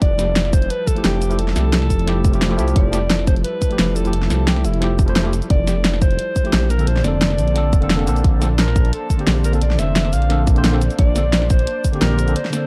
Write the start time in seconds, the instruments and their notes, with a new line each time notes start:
0.02 detuned saw bass F1, analog synth pad F3 G3 E4 A4, alto saxophone D5, kick, closed hi-hat
0.17 tine electric piano F3 A3 E4 G4, snare, closed hi-hat, cabasa
0.36 snare, closed hi-hat
0.45 snare
0.53 alto saxophone C5, kick, closed hi-hat, cabasa
0.62 closed hi-hat
0.70 alto saxophone B4, closed hi-hat
0.87 alto saxophone A4, kick, closed hi-hat, cabasa
0.95 tine electric piano F3 A3 E4 G4, closed hi-hat
1.04 detuned saw bass F1, alto saxophone G4, snare, closed hi-hat
1.22 closed hi-hat, cabasa
1.29 tine electric piano F3 A3 E4 G4, closed hi-hat, cabasa
1.39 detuned saw bass F1, alto saxophone A4, closed hi-hat
1.48 snare
1.53 detuned saw bass C2, tine electric piano F3 A3, snare, closed hi-hat, cabasa
1.57 tine electric piano E4 G4
1.73 snare, closed hi-hat
1.82 snare
1.90 detuned saw bass F1, kick, open hi-hat, cabasa
1.99 closed hi-hat
2.06 tine electric piano F3 A3 E4 G4, snare, closed hi-hat
2.25 detuned saw bass F1, kick, closed hi-hat, cabasa
2.32 tine electric piano F3 A3 E4 G4, closed hi-hat, cabasa
2.42 snare, closed hi-hat
2.49 tine electric piano F3 A3 E4 G4, snare
2.57 detuned saw bass C2, tine electric piano F3 A3 E4 G4, closed hi-hat, cabasa
2.68 closed hi-hat, cabasa
2.76 detuned saw bass F1, alto saxophone D5, kick, closed hi-hat
2.91 tine electric piano F3 A3 E4 G4, snare, closed hi-hat, cabasa
3.10 snare, closed hi-hat
3.19 snare
3.27 alto saxophone C5, kick, closed hi-hat, cabasa
3.36 closed hi-hat
3.44 alto saxophone B4, closed hi-hat
3.62 kick, closed hi-hat, cabasa
3.69 tine electric piano F3 A3 E4 G4, closed hi-hat
3.79 detuned saw bass F1, snare, closed hi-hat
3.96 alto saxophone A4, closed hi-hat, cabasa
4.04 tine electric piano F3 A3 E4 G4, closed hi-hat, cabasa
4.13 detuned saw bass F1, closed hi-hat
4.22 snare
4.27 detuned saw bass C2, tine electric piano F3 A3, snare, closed hi-hat, cabasa
4.31 tine electric piano E4 G4
4.47 alto saxophone G4, snare, closed hi-hat
4.56 snare
4.65 detuned saw bass F1, alto saxophone E4, open hi-hat, cabasa
4.74 closed hi-hat
4.80 tine electric piano F3 A3 E4 G4, snare, closed hi-hat
4.99 kick, closed hi-hat, cabasa
5.06 tine electric piano F3 A3 E4 C5, closed hi-hat
5.16 snare, closed hi-hat
5.23 tine electric piano F3 A3 E4 G4, snare
5.33 closed hi-hat, cabasa
5.42 closed hi-hat, cabasa
5.50 detuned saw bass F1, alto saxophone D5, kick, closed hi-hat
5.66 tine electric piano F3 A3 E4 G4, snare, closed hi-hat, cabasa
5.85 snare, closed hi-hat
5.93 snare
6.02 alto saxophone C5, kick, closed hi-hat, cabasa
6.11 closed hi-hat
6.19 closed hi-hat
6.36 kick, closed hi-hat, cabasa
6.43 tine electric piano F3 A3 E4 G4, closed hi-hat
6.53 detuned saw bass A#1, snare, closed hi-hat
6.70 analog synth pad A#3 D4 C5 A5, alto saxophone A#4, closed hi-hat, cabasa
6.78 tine electric piano D3 A#3 C4 A4, closed hi-hat, cabasa
6.87 detuned saw bass A#1, alto saxophone C5, closed hi-hat
6.96 snare
7.01 detuned saw bass F1, tine electric piano D3 A#3, alto saxophone D5, snare, closed hi-hat, cabasa
7.06 tine electric piano C4 A4
7.22 snare, closed hi-hat
7.30 snare
7.38 detuned saw bass A#1, open hi-hat, cabasa
7.48 closed hi-hat
7.54 tine electric piano D3 A#3 C4 A4, snare, closed hi-hat
7.73 detuned saw bass F1, kick, closed hi-hat, cabasa
7.80 tine electric piano D3 A#3 C4 A4, closed hi-hat
7.90 snare, closed hi-hat
7.98 tine electric piano D3 A#3 C4 A4, snare
8.06 detuned saw bass A#1, tine electric piano D3 A#3 C4 A4, closed hi-hat, cabasa
8.16 closed hi-hat, cabasa
8.24 detuned saw bass A#1, kick, closed hi-hat
8.40 tine electric piano D3 A#3 C4 A4, snare, closed hi-hat, cabasa
8.59 alto saxophone A#4, snare, closed hi-hat
8.68 snare
8.76 kick, closed hi-hat, cabasa
8.85 closed hi-hat
8.93 alto saxophone A4, closed hi-hat
9.10 kick, closed hi-hat, cabasa
9.17 tine electric piano D3 A#3 C4 G4, closed hi-hat
9.27 detuned saw bass A#1, snare, closed hi-hat
9.44 alto saxophone A#4, closed hi-hat, cabasa
9.52 tine electric piano D3 A#3 C4 A4, closed hi-hat, cabasa
9.62 detuned saw bass A#1, alto saxophone D5, closed hi-hat
9.71 snare
9.75 detuned saw bass F1, tine electric piano D3 A#3, alto saxophone E5, snare, closed hi-hat, cabasa
9.80 tine electric piano C4 A4
9.96 snare, closed hi-hat
10.05 snare
10.13 detuned saw bass A#1, analog synth pad D5, alto saxophone F5, open hi-hat, cabasa
10.22 closed hi-hat
10.29 tine electric piano D3 A#3 C4 A4, snare, closed hi-hat
10.47 kick, closed hi-hat, cabasa
10.55 tine electric piano D3 A#3 C4 C5, closed hi-hat
10.64 snare, closed hi-hat
10.72 tine electric piano D3 A#3 C4 A4, snare
10.82 closed hi-hat, cabasa
10.90 closed hi-hat, cabasa
10.99 detuned saw bass A#1, alto saxophone D5, kick, closed hi-hat
11.14 tine electric piano D3 A#3 C4 A4, snare, closed hi-hat, cabasa
11.33 snare, closed hi-hat
11.42 snare
11.50 alto saxophone C5, kick, closed hi-hat, cabasa
11.59 closed hi-hat
11.67 closed hi-hat
11.84 kick, closed hi-hat, cabasa
11.92 tine electric piano D3 A#3 C4 G4, closed hi-hat
12.01 detuned saw bass A#1, alto saxophone A#4, snare, closed hi-hat
12.19 closed hi-hat, cabasa
12.26 tine electric piano D3 A#3 C4 A4, closed hi-hat, cabasa
12.36 alto saxophone C5, closed hi-hat
12.45 snare
12.50 tine electric piano D3 A#3, snare, closed hi-hat, cabasa
12.54 tine electric piano C4 A4